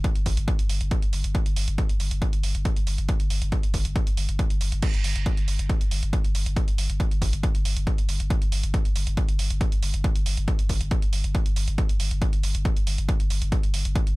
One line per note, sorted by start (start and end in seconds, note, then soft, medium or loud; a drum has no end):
0.04 kick loud
0.04 closed hi-hat medium
0.15 0.25 G1 medium
0.15 closed hi-hat medium
0.26 0.37 G1 loud
0.26 kick medium
0.26 open hi-hat loud
0.37 0.48 G1 medium
0.37 closed hi-hat medium
0.48 kick loud
0.48 closed hi-hat medium
0.59 0.69 G1 medium
0.59 closed hi-hat medium
0.69 0.80 G1 loud
0.69 open hi-hat loud
0.81 0.91 G1 medium
0.81 closed hi-hat medium
0.91 kick loud
0.91 closed hi-hat medium
1.02 1.13 G1 medium
1.02 closed hi-hat medium
1.13 1.24 G1 loud
1.13 open hi-hat loud
1.24 1.35 G1 medium
1.24 closed hi-hat medium
1.35 kick loud
1.35 closed hi-hat medium
1.46 1.56 G1 medium
1.46 closed hi-hat medium
1.56 1.67 G1 loud
1.56 open hi-hat loud
1.68 1.78 G1 medium
1.68 closed hi-hat medium
1.78 kick loud
1.78 closed hi-hat medium
1.89 1.99 G1 medium
1.89 closed hi-hat medium
2.00 2.11 G1 loud
2.00 open hi-hat loud
2.11 2.21 G1 medium
2.11 closed hi-hat medium
2.22 kick loud
2.22 closed hi-hat medium
2.33 2.43 G1 medium
2.33 closed hi-hat medium
2.43 2.54 G1 loud
2.43 open hi-hat medium
2.55 2.65 G1 medium
2.55 closed hi-hat medium
2.65 kick loud
2.65 closed hi-hat medium
2.76 2.86 G1 medium
2.76 closed hi-hat medium
2.87 2.98 G1 loud
2.87 open hi-hat loud
2.98 3.08 G1 medium
2.98 closed hi-hat medium
3.09 kick loud
3.09 closed hi-hat medium
3.20 3.30 G1 medium
3.20 closed hi-hat medium
3.30 3.41 G1 loud
3.30 open hi-hat loud
3.42 3.52 G1 medium
3.42 closed hi-hat medium
3.52 kick loud
3.52 closed hi-hat medium
3.63 3.73 G1 medium
3.63 closed hi-hat medium
3.74 3.85 G1 loud
3.74 kick medium
3.74 open hi-hat loud
3.85 3.95 G1 medium
3.85 closed hi-hat medium
3.96 kick loud
3.96 closed hi-hat medium
4.07 4.17 G1 medium
4.07 closed hi-hat medium
4.17 4.28 G1 loud
4.17 open hi-hat medium
4.29 4.39 G1 medium
4.29 closed hi-hat medium
4.39 kick loud
4.39 closed hi-hat medium
4.50 4.60 G1 medium
4.50 closed hi-hat medium
4.61 4.72 G1 loud
4.61 open hi-hat loud
4.72 4.82 G1 medium
4.72 closed hi-hat medium
4.82 kick loud
4.82 closed hi-hat medium
4.82 crash medium
4.94 5.04 G1 medium
4.94 closed hi-hat medium
5.04 5.15 G1 loud
5.04 open hi-hat loud
5.16 5.26 G1 medium
5.16 closed hi-hat medium
5.26 kick loud
5.26 closed hi-hat medium
5.37 5.47 G1 medium
5.37 closed hi-hat medium
5.48 5.58 G1 loud
5.48 open hi-hat loud
5.59 5.69 G1 medium
5.59 closed hi-hat medium
5.69 kick loud
5.69 closed hi-hat medium
5.81 5.91 G1 medium
5.81 closed hi-hat medium
5.91 6.02 G1 loud
5.91 open hi-hat loud
6.03 6.13 G1 medium
6.03 closed hi-hat medium
6.13 kick loud
6.13 closed hi-hat medium
6.24 6.34 G1 medium
6.24 closed hi-hat medium
6.35 6.45 G1 loud
6.35 open hi-hat loud
6.46 6.56 G1 medium
6.46 closed hi-hat medium
6.56 kick loud
6.56 closed hi-hat medium
6.68 6.77 G1 medium
6.68 closed hi-hat medium
6.78 6.89 G1 loud
6.78 open hi-hat loud
6.89 7.00 G1 medium
6.89 closed hi-hat medium
7.00 kick loud
7.00 closed hi-hat medium
7.11 7.21 G1 medium
7.11 closed hi-hat medium
7.22 7.32 G1 medium
7.22 kick medium
7.22 open hi-hat loud
7.33 7.43 G1 medium
7.33 closed hi-hat medium
7.43 kick loud
7.43 closed hi-hat medium
7.55 7.64 G1 medium
7.55 closed hi-hat medium
7.65 7.76 G1 loud
7.65 open hi-hat loud
7.76 7.87 G1 medium
7.76 closed hi-hat medium
7.87 kick loud
7.87 closed hi-hat medium
7.98 8.08 G1 medium
7.98 closed hi-hat medium
8.09 8.19 G1 loud
8.09 open hi-hat loud
8.20 8.30 G1 medium
8.20 closed hi-hat medium
8.30 kick loud
8.30 closed hi-hat medium
8.42 8.52 G1 medium
8.42 closed hi-hat medium
8.52 8.63 G1 loud
8.52 open hi-hat loud
8.63 8.74 G1 medium
8.63 closed hi-hat medium
8.74 kick loud
8.74 closed hi-hat medium
8.85 8.95 G1 medium
8.85 closed hi-hat medium
8.96 9.06 G1 medium
8.96 open hi-hat loud
9.07 9.17 G1 medium
9.07 closed hi-hat medium
9.17 kick loud
9.17 closed hi-hat medium
9.29 9.38 G1 medium
9.29 closed hi-hat medium
9.39 9.50 G1 loud
9.39 open hi-hat loud
9.50 9.61 G1 medium
9.50 closed hi-hat medium
9.61 kick loud
9.61 closed hi-hat medium
9.72 9.82 G1 medium
9.72 closed hi-hat medium
9.83 9.93 G1 loud
9.83 open hi-hat loud
9.94 10.04 G1 medium
9.94 closed hi-hat medium
10.04 kick loud
10.04 closed hi-hat medium
10.16 10.25 G1 medium
10.16 closed hi-hat medium
10.26 10.37 G1 loud
10.26 open hi-hat loud
10.37 10.48 G1 medium
10.37 closed hi-hat medium
10.48 kick loud
10.48 closed hi-hat medium
10.59 10.69 G1 medium
10.59 closed hi-hat medium
10.69 10.80 G1 loud
10.69 kick medium
10.69 open hi-hat loud
10.81 10.91 G1 medium
10.81 closed hi-hat medium
10.91 kick loud
10.91 closed hi-hat medium
11.02 11.12 G1 medium
11.02 closed hi-hat medium
11.13 11.24 G1 loud
11.13 open hi-hat loud
11.24 11.35 G1 medium
11.24 closed hi-hat medium
11.35 kick loud
11.35 closed hi-hat medium
11.46 11.56 G1 medium
11.46 closed hi-hat medium
11.56 11.67 G1 loud
11.56 open hi-hat loud
11.68 11.78 G1 medium
11.68 closed hi-hat medium
11.78 kick loud
11.78 closed hi-hat medium
11.89 11.99 G1 medium
11.89 closed hi-hat medium
12.00 12.11 G1 loud
12.00 open hi-hat loud
12.11 12.21 G1 medium
12.11 closed hi-hat medium
12.22 kick loud
12.22 closed hi-hat medium
12.33 12.43 G1 medium
12.33 closed hi-hat medium
12.43 12.54 G1 loud
12.43 open hi-hat loud
12.55 12.65 G1 medium
12.55 closed hi-hat medium
12.65 kick loud
12.65 closed hi-hat medium
12.77 12.86 G1 medium
12.77 closed hi-hat medium
12.87 12.98 G1 loud
12.87 open hi-hat loud
12.98 13.08 G1 medium
12.98 closed hi-hat medium
13.09 kick loud
13.09 closed hi-hat medium
13.20 13.30 G1 medium
13.20 closed hi-hat medium
13.30 13.41 G1 loud
13.30 open hi-hat loud
13.42 13.52 G1 medium
13.42 closed hi-hat medium
13.52 kick loud
13.52 closed hi-hat medium
13.63 13.73 G1 medium
13.63 closed hi-hat medium
13.74 13.85 G1 loud
13.74 open hi-hat loud
13.85 13.95 G1 medium
13.85 closed hi-hat medium
13.96 kick loud
13.96 closed hi-hat medium
14.07 14.16 G1 medium
14.07 closed hi-hat medium